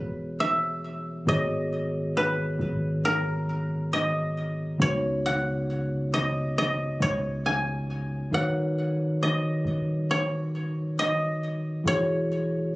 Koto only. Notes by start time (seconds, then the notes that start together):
Already playing: B4
0.40 E5
1.29 D#5
2.17 B4
3.05 A#4
3.93 D#5
4.82 C#5
5.26 F#5
6.14 D#5
6.58 D#5
7.02 C#5
7.46 G#5
8.34 F#5
9.23 D#5
10.11 C#5
10.99 D#5
11.87 C#5